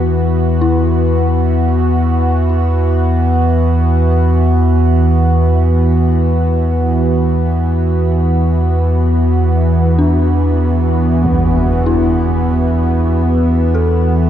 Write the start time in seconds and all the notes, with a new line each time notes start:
Already playing: E2 E3 B3 E4 F#4
0.61 E4
9.98 D4
11.25 impact
11.86 E4
13.74 A4